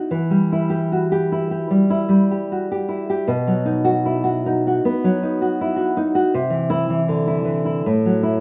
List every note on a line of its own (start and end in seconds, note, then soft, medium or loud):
0.00 0.10 D#4 soft
0.00 0.10 E4 soft
0.00 0.11 F#4 medium
0.11 1.68 E3 medium
0.30 1.52 G3 medium
0.52 1.31 E4 medium
0.70 1.03 G4 medium
0.92 2.12 F#4 soft
1.12 1.50 G4 medium
1.32 1.89 E4 medium
1.51 2.30 G4 medium
1.70 2.08 G3 medium
1.90 2.87 E4 medium
2.09 3.27 G3 medium
2.31 2.70 G4 medium
2.52 3.29 F#4 soft
2.71 3.08 G4 medium
2.88 3.27 E4 medium
3.10 3.28 G4 medium
3.28 4.80 B2 medium
3.47 4.65 F#3 medium
3.66 4.45 D#4 medium
3.84 4.17 F#4 medium
4.05 5.22 E4 medium
4.24 4.66 F#4 medium
4.46 5.22 D#4 medium
4.67 5.40 F#4 medium
4.85 5.96 B3 medium
5.04 6.14 F#3 medium
5.23 5.96 D#4 medium
5.41 5.75 F#4 medium
5.61 6.33 E4 medium
5.76 6.14 F#4 medium
5.97 6.33 D#4 medium
6.15 6.33 F#4 medium
6.34 7.82 C3 medium
6.50 6.88 E3 medium
6.70 7.00 E4 medium
6.90 7.44 E3 medium
7.08 7.85 D3 medium
7.27 7.64 E4 medium
7.45 7.84 E3 medium
7.65 7.85 E4 medium
7.86 8.40 A2 medium
8.06 8.40 F#3 soft
8.23 8.40 E4 medium